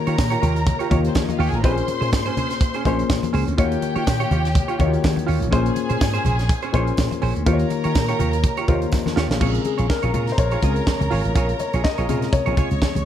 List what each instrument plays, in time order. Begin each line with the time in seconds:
Already playing: grand piano D#3 A#3 F4 G4 C#5, string section A#4 A#5
0.07 slap bass D#3, clean electric guitar F4 G4 C#5, closed hi-hat
0.18 slap bass A#2, kick, snare, tambourine, high conga
0.30 clean electric guitar F4 G4 C#5, closed hi-hat
0.41 slap bass D#2, clean electric guitar F4 G4 C#5, closed hi-hat, muted conga, low conga
0.55 muted clean electric guitar stroke, closed hi-hat
0.66 muted clean electric guitar stroke, kick, closed hi-hat, low conga
0.79 clean electric guitar F4 G4 C#5, closed hi-hat
0.90 slap bass D#2, grand piano D#3 A#3 F4 G4 C#5, clean electric guitar F4 G4 C#5, kick, closed hi-hat, muted conga, low conga
1.03 string section C4 C5, muted clean electric guitar stroke, closed hi-hat
1.15 slap bass D#3, string section C#4 C#5, kick, snare, tambourine, high conga
1.23 string section D#4 D#5
1.29 string section F4 F5, muted clean electric guitar stroke, closed hi-hat, high conga
1.39 slap bass D#2, clean electric guitar F4 G4 C#5, string section G4 G5, open hi-hat
1.48 string section G#4 G#5
1.53 slap bass A1, string section A#4 A#5, muted clean electric guitar stroke, closed hi-hat
1.63 slap bass A#1, grand piano A#2 A#3 C4 G#4 C5, clean electric guitar C#4 G#4 C5, string section C5 C6, kick, closed hi-hat, muted conga
1.70 grand piano C#4
1.77 muted clean electric guitar stroke, closed hi-hat
1.88 muted clean electric guitar stroke, closed hi-hat, muted conga
2.01 slap bass A#2, clean electric guitar C#4 G#4 C5, closed hi-hat
2.13 slap bass G#2, kick, snare, tambourine, high conga
2.26 clean electric guitar C#4 G#4 C5, closed hi-hat
2.37 clean electric guitar C#4 G#4 C5, closed hi-hat, low conga
2.50 muted clean electric guitar stroke, snare, closed hi-hat
2.61 muted clean electric guitar stroke, kick, closed hi-hat
2.74 clean electric guitar C#4 G#4 C5, closed hi-hat
2.85 slap bass A#1, grand piano A#2 A#3 C#4 G#4 C5, clean electric guitar C#4 G#4 C#5, kick, closed hi-hat, muted conga
2.99 muted clean electric guitar stroke, closed hi-hat
3.10 slap bass A#2, kick, snare, tambourine, high conga
3.23 muted clean electric guitar stroke, closed hi-hat, high conga
3.33 slap bass C#2, clean electric guitar C#4 G#4 C5, open hi-hat
3.47 slap bass D2, muted clean electric guitar stroke, closed hi-hat
3.57 slap bass D#2, grand piano D#3 A#3 F4 F#4 C#5, clean electric guitar F4 G4 C#5, string section G4 G5, kick, closed hi-hat, muted conga
3.64 grand piano G4
3.71 muted clean electric guitar stroke, closed hi-hat
3.82 muted clean electric guitar stroke, closed hi-hat, muted conga
3.96 slap bass D#3, clean electric guitar F4 G4 C#5, closed hi-hat
4.07 slap bass A#2, kick, snare, tambourine, high conga
4.20 clean electric guitar F4 G4 C#5, closed hi-hat
4.31 slap bass D#2, clean electric guitar F4 G4 C#5, closed hi-hat, low conga
4.44 muted clean electric guitar stroke, snare, closed hi-hat
4.55 muted clean electric guitar stroke, kick, closed hi-hat, low conga
4.68 clean electric guitar F4 G4 C#5, closed hi-hat
4.79 slap bass D#2, grand piano D#3 A#3 F4 F#4 C#5, clean electric guitar F4 G4 C#5, kick, closed hi-hat, muted conga, low conga
4.86 grand piano G4
4.92 muted clean electric guitar stroke, closed hi-hat
5.03 slap bass D#3, muted clean electric guitar stroke, kick, snare, tambourine, high conga
5.16 muted clean electric guitar stroke, closed hi-hat, high conga
5.27 slap bass D#2, clean electric guitar F4 G4 C#5, open hi-hat
5.41 slap bass A1, muted clean electric guitar stroke, closed hi-hat
5.51 slap bass A#1, grand piano A#2 A#3 C#4 G#4 C5, clean electric guitar C#4 G#4 C5, string section G#4 G#5, kick, closed hi-hat, muted conga
5.65 muted clean electric guitar stroke, closed hi-hat
5.75 muted clean electric guitar stroke, closed hi-hat, muted conga
5.89 slap bass A#2, clean electric guitar C#4 G#4 C5, closed hi-hat
6.00 slap bass G#2, muted clean electric guitar stroke, kick, snare, tambourine, high conga
6.14 clean electric guitar C#4 G#4 C5, closed hi-hat
6.24 slap bass A#1, clean electric guitar C#4 G#4 C5, closed hi-hat, low conga
6.39 muted clean electric guitar stroke, snare, closed hi-hat
6.49 muted clean electric guitar stroke, kick, closed hi-hat
6.62 clean electric guitar C#4 G#4 C5, closed hi-hat
6.73 slap bass A#1, grand piano A#2 A#3 C#4 G#4 C5, clean electric guitar C#4 G#4 C#5, kick, closed hi-hat, muted conga
6.87 muted clean electric guitar stroke, closed hi-hat
6.97 slap bass A#2, kick, snare, tambourine, high conga
7.11 muted clean electric guitar stroke, closed hi-hat, high conga
7.22 slap bass A#1, clean electric guitar C#4 G#4 C5, open hi-hat
7.35 slap bass D2, muted clean electric guitar stroke, closed hi-hat
7.46 slap bass D#2, grand piano D#3 A#3 F4 G4 C5, clean electric guitar F4 G4 C#5, string section A#4 A#5, kick, closed hi-hat, muted conga
7.53 grand piano C#5
7.59 muted clean electric guitar stroke, closed hi-hat
7.70 muted clean electric guitar stroke, closed hi-hat, muted conga
7.84 slap bass D#3, clean electric guitar F4 G4 C#5, closed hi-hat
7.95 slap bass A#2, muted clean electric guitar stroke, kick, snare, tambourine, high conga
8.09 clean electric guitar F4 G4 C#5, closed hi-hat
8.19 slap bass D#2, clean electric guitar F4 G4 C#5, closed hi-hat, muted conga, low conga
8.33 muted clean electric guitar stroke, closed hi-hat
8.44 muted clean electric guitar stroke, kick, closed hi-hat, low conga
8.57 clean electric guitar F4 G4 C#5, closed hi-hat
8.67 slap bass D#2, grand piano D#3 A#3 F4 G4 C5, clean electric guitar F4 G4 C#5, kick, closed hi-hat, muted conga, low conga
8.75 grand piano C#5
8.82 muted clean electric guitar stroke, closed hi-hat
8.92 slap bass D#3, muted clean electric guitar stroke, kick, snare, tambourine, high conga
9.06 muted clean electric guitar stroke, snare, high conga
9.16 slap bass D#2, clean electric guitar F4 G4 C#5, snare
9.30 slap bass A1, muted clean electric guitar stroke, snare
9.40 slap bass A#1, grand piano C#3 G#3 C4, clean electric guitar F4 G#4 C#5, string section A#4 A#5, kick, crash, muted conga
9.54 muted clean electric guitar stroke, closed hi-hat
9.64 grand piano G#4, muted clean electric guitar stroke, closed hi-hat, muted conga
9.78 slap bass A#1, clean electric guitar F4 G#4 C#5, closed hi-hat
9.89 grand piano A#4, muted clean electric guitar stroke, kick, snare, high conga
10.03 slap bass A#1, clean electric guitar F4 G#4 C#5, closed hi-hat
10.13 slap bass A#2, clean electric guitar F4 G#4 C#5, closed hi-hat, muted conga, low conga
10.27 muted clean electric guitar stroke, snare, closed hi-hat
10.32 grand piano C5
10.38 slap bass A#1, grand piano C#5, muted clean electric guitar stroke, kick, closed hi-hat
10.51 clean electric guitar F4 G#4 C#5, closed hi-hat
10.62 slap bass C#2, grand piano C#3 G#3 C4, clean electric guitar F4 G#4 D#5, kick, closed hi-hat, muted conga
10.76 muted clean electric guitar stroke, closed hi-hat
10.87 kick, snare, high conga
11.00 slap bass C#2, muted clean electric guitar stroke, closed hi-hat, high conga
11.11 slap bass G#1, clean electric guitar F4 G#4 C#5, open hi-hat
11.24 slap bass A1, muted clean electric guitar stroke, closed hi-hat
11.35 slap bass A#1, clean electric guitar F4 G#4 C#5, kick, closed hi-hat, muted conga
11.49 muted clean electric guitar stroke, closed hi-hat
11.59 grand piano C#5, muted clean electric guitar stroke, closed hi-hat, muted conga
11.73 slap bass A#1, clean electric guitar F4 G#4 C#5, closed hi-hat
11.84 grand piano D#5, muted clean electric guitar stroke, kick, snare, high conga
11.98 slap bass A#1, clean electric guitar F4 G#4 C#5, closed hi-hat
12.08 slap bass A#2, grand piano C3 C#3 G#3, clean electric guitar F4 G#4 C#5, closed hi-hat, muted conga, low conga
12.22 muted clean electric guitar stroke, snare, closed hi-hat
12.33 grand piano C#5, muted clean electric guitar stroke, kick, closed hi-hat, low conga
12.46 slap bass A#1, clean electric guitar F4 G#4 C#5, closed hi-hat
12.57 clean electric guitar F4 G#4 C#5, string section C#5 C#6, kick, closed hi-hat, muted conga, low conga
12.71 slap bass C#2, closed hi-hat
12.82 muted clean electric guitar stroke, kick, snare, high conga
12.95 slap bass C#2, muted clean electric guitar stroke, closed hi-hat, high conga